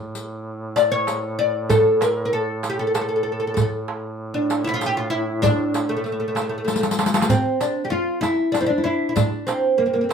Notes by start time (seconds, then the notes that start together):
Already playing: A2
0.15 riq
0.76 D5, riq, darbuka tek
0.92 C#5
1.07 riq, darbuka tek
1.39 D5, darbuka ka
1.69 A4, riq, darbuka dum
2.01 A#4, riq, darbuka tek
2.25 A#4
2.33 A4
2.63 riq, darbuka tek
2.70 G4
2.79 A4
2.87 A4
2.94 A4, riq, darbuka tek
3.01 A4
3.09 A4
3.16 A4
3.23 A4, darbuka ka
3.32 A4
3.40 A4
3.47 A4
3.54 A2 A4, riq, darbuka dum
3.61 A4
3.88 darbuka tek
4.34 D4
4.50 riq, darbuka tek
4.64 E4
4.69 E4
4.74 F4
4.81 riq, darbuka tek
4.86 G4
4.97 F4
5.10 E4, darbuka ka
5.42 D4, riq, darbuka dum
5.74 riq, darbuka tek
5.89 A3
5.97 A3
6.04 A3, riq, darbuka ka
6.12 A3
6.20 A3
6.28 A3
6.35 A3, riq, darbuka tek
6.41 A3
6.49 A3
6.58 A3
6.65 A3, riq, darbuka tek
6.72 A3, riq, darbuka ka
6.80 A3, riq, darbuka tek
6.91 riq, darbuka ka
6.99 riq, darbuka tek
7.06 riq, darbuka ka
7.14 riq, darbuka tek
7.22 riq, darbuka ka
7.29 C4, riq, darbuka dum
7.61 D4, riq, darbuka tek
7.84 G4
7.90 F4
8.21 E4, riq, darbuka tek
8.52 D4, riq, darbuka tek
8.61 C4 E4
8.66 D4
8.78 E4
8.84 D4 E4
9.09 E4
9.16 D4, riq, darbuka dum
9.47 C4, riq, darbuka tek
9.78 A#3
9.86 A#3 C4
9.94 A#3
10.01 A#3 C4
10.09 A#3